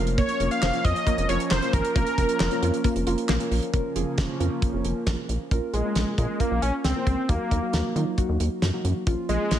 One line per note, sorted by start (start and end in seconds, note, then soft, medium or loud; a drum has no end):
0.00 0.22 F1 loud
0.00 3.70 F3 medium
0.00 0.35 A#3 medium
0.00 3.70 A#3 medium
0.00 0.35 C#4 medium
0.00 3.70 C#4 medium
0.00 0.35 F4 medium
0.00 0.35 A#4 medium
0.07 closed hi-hat medium
0.18 0.33 A#3 medium
0.18 0.49 C#5 loud
0.18 kick loud
0.18 closed hi-hat medium
0.29 closed hi-hat medium
0.40 0.49 F1 loud
0.40 0.70 A#3 medium
0.40 0.70 C#4 medium
0.40 0.70 F4 medium
0.40 0.70 A#4 medium
0.40 closed hi-hat medium
0.51 0.86 F5 loud
0.51 closed hi-hat medium
0.62 0.71 F1 loud
0.62 0.77 C5 medium
0.62 snare loud
0.62 clap medium
0.73 1.03 A#3 medium
0.73 1.03 C#4 medium
0.73 1.03 F4 medium
0.73 1.03 C#5 medium
0.73 closed hi-hat medium
0.85 0.93 F2 medium
0.85 0.99 F4 medium
0.85 1.28 D#5 loud
0.85 kick medium
0.85 closed hi-hat medium
0.96 closed hi-hat soft
1.07 1.22 A#3 medium
1.07 1.27 A#3 medium
1.07 1.26 C#4 medium
1.07 1.26 F4 medium
1.07 1.26 A#4 medium
1.07 kick medium
1.07 closed hi-hat medium
1.18 1.27 F1 loud
1.18 closed hi-hat medium
1.29 1.38 F1 loud
1.29 1.59 A#3 medium
1.29 1.59 C#4 medium
1.29 1.59 F4 medium
1.29 1.44 F4 medium
1.29 1.59 A#4 medium
1.29 1.39 C#5 loud
1.29 closed hi-hat medium
1.40 closed hi-hat medium
1.51 1.60 F1 medium
1.51 1.66 A#3 medium
1.51 1.75 C5 loud
1.51 snare loud
1.51 clap medium
1.62 1.92 A#3 medium
1.62 1.92 C#4 medium
1.62 1.92 F4 medium
1.62 1.92 A#4 medium
1.62 closed hi-hat medium
1.73 1.82 G#1 medium
1.73 3.29 A#4 loud
1.73 kick loud
1.73 closed hi-hat medium
1.85 closed hi-hat medium
1.96 2.04 F1 loud
1.96 2.15 A#3 medium
1.96 2.11 A#3 medium
1.96 2.15 C#4 medium
1.96 2.15 F4 medium
1.96 2.15 A#4 medium
1.96 kick loud
1.96 closed hi-hat medium
2.07 closed hi-hat medium
2.18 2.27 F1 loud
2.18 2.47 A#3 medium
2.18 2.47 C#4 medium
2.18 2.47 F4 medium
2.18 2.47 A#4 medium
2.18 kick medium
2.18 closed hi-hat medium
2.29 closed hi-hat medium
2.40 2.49 F1 loud
2.40 2.55 C5 medium
2.40 snare loud
2.40 clap loud
2.51 2.81 A#3 medium
2.51 2.81 C#4 medium
2.51 2.81 F4 medium
2.51 2.81 A#4 loud
2.51 closed hi-hat medium
2.62 2.71 F2 medium
2.62 2.77 F4 medium
2.62 closed hi-hat medium
2.74 closed hi-hat soft
2.84 3.04 A#3 medium
2.84 2.99 A#3 medium
2.84 3.04 C#4 medium
2.84 3.04 F4 medium
2.84 3.04 A#4 loud
2.84 kick medium
2.84 closed hi-hat medium
2.96 3.04 F1 loud
2.96 closed hi-hat medium
3.07 3.16 F1 loud
3.07 3.36 A#3 medium
3.07 3.36 C#4 medium
3.07 3.36 F4 medium
3.07 3.22 F4 medium
3.07 3.36 A#4 loud
3.07 closed hi-hat medium
3.18 closed hi-hat medium
3.29 3.38 A#1 loud
3.29 3.44 A#3 medium
3.29 snare loud
3.29 clap medium
3.40 3.70 A#3 medium
3.40 3.70 C#4 medium
3.40 3.70 F4 medium
3.40 3.70 A#4 loud
3.40 closed hi-hat medium
3.51 3.60 A#1 medium
3.51 open hi-hat medium
3.63 closed hi-hat medium
3.74 3.82 F1 loud
3.74 5.50 C#3 medium
3.74 5.50 F3 medium
3.74 3.93 A#3 medium
3.74 5.50 A#3 medium
3.74 3.93 C#4 medium
3.74 5.50 C#4 medium
3.74 3.93 F4 medium
3.74 3.93 A#4 loud
3.74 kick loud
3.74 closed hi-hat medium
3.96 4.04 F1 loud
3.96 4.35 A#3 medium
3.96 4.35 C#4 medium
3.96 4.35 F4 medium
3.96 4.35 G#4 loud
3.96 closed hi-hat medium
4.18 4.27 F1 loud
4.18 kick loud
4.18 snare loud
4.18 closed hi-hat medium
4.40 4.49 F2 loud
4.40 5.19 A#3 medium
4.40 5.19 C#4 medium
4.40 5.19 F4 medium
4.40 5.19 A#4 medium
4.40 closed hi-hat medium
4.62 kick loud
4.62 closed hi-hat medium
4.74 4.82 F1 medium
4.85 4.93 F1 medium
4.85 closed hi-hat medium
5.07 5.16 A#1 medium
5.07 kick loud
5.07 snare loud
5.07 closed hi-hat medium
5.29 5.38 A#1 loud
5.29 closed hi-hat medium
5.51 5.60 A#1 loud
5.51 5.81 A#3 medium
5.51 5.81 C#4 medium
5.51 5.81 F4 medium
5.51 5.81 A#4 medium
5.51 kick loud
5.51 closed hi-hat medium
5.73 5.82 A#1 loud
5.73 6.15 G#3 medium
5.73 closed hi-hat medium
5.85 6.14 A#3 medium
5.85 6.14 C#4 medium
5.85 6.14 F4 medium
5.85 6.14 A#4 medium
5.95 6.04 A#1 loud
5.95 snare loud
5.95 closed hi-hat medium
6.18 6.27 A#2 loud
6.18 6.41 G#3 medium
6.18 6.38 A#3 medium
6.18 6.38 C#4 medium
6.18 6.38 F4 medium
6.18 6.38 A#4 medium
6.18 kick medium
6.18 closed hi-hat medium
6.40 6.62 A#3 loud
6.40 6.89 A#3 medium
6.40 6.89 C#4 medium
6.40 6.89 F4 medium
6.40 6.89 A#4 medium
6.40 kick medium
6.40 closed hi-hat medium
6.51 6.60 A#1 loud
6.62 6.71 A#1 medium
6.62 6.72 C#4 loud
6.62 closed hi-hat medium
6.84 6.93 C#2 loud
6.84 7.31 C4 loud
6.84 snare loud
6.84 closed hi-hat medium
6.96 7.25 A#3 medium
6.96 7.25 C#4 medium
6.96 7.25 F4 medium
6.96 7.25 A#4 medium
7.07 7.15 C#2 medium
7.07 kick medium
7.07 closed hi-hat medium
7.29 7.38 D#2 loud
7.29 7.59 F#3 medium
7.29 7.96 A#3 loud
7.29 7.59 A#3 medium
7.29 7.59 D#4 medium
7.29 7.59 F#4 medium
7.29 kick loud
7.29 closed hi-hat medium
7.51 7.60 D#2 loud
7.51 kick medium
7.51 closed hi-hat medium
7.62 7.92 F#3 medium
7.62 7.92 A#3 medium
7.62 7.92 D#4 medium
7.62 7.92 F#4 medium
7.73 7.82 D#2 loud
7.73 snare loud
7.73 closed hi-hat medium
7.96 8.04 D#3 loud
7.96 8.15 F#3 medium
7.96 8.15 A#3 medium
7.96 8.15 D#4 medium
7.96 8.15 F4 loud
7.96 closed hi-hat medium
8.18 8.67 F#3 medium
8.18 8.67 A#3 medium
8.18 8.67 D#4 medium
8.18 8.67 F#4 loud
8.18 kick medium
8.18 closed hi-hat medium
8.29 8.38 D#2 medium
8.40 8.49 D#2 loud
8.40 closed hi-hat medium
8.62 8.71 F#2 medium
8.62 snare loud
8.62 closed hi-hat medium
8.73 9.03 F#3 medium
8.73 9.03 A#3 medium
8.73 9.03 D#4 medium
8.73 9.03 F#4 medium
8.85 8.93 F#2 medium
8.85 closed hi-hat medium
9.07 9.16 A#1 loud
9.07 9.36 F3 medium
9.07 9.36 A#3 medium
9.07 9.36 C#4 medium
9.07 9.36 F4 loud
9.07 kick loud
9.07 closed hi-hat medium
9.29 9.38 A#1 loud
9.29 9.59 G#3 loud
9.29 closed hi-hat medium
9.40 9.59 F3 medium
9.40 9.59 A#3 medium
9.40 9.59 C#4 medium
9.40 9.59 F4 medium
9.51 9.59 A#1 loud
9.51 snare loud
9.51 closed hi-hat medium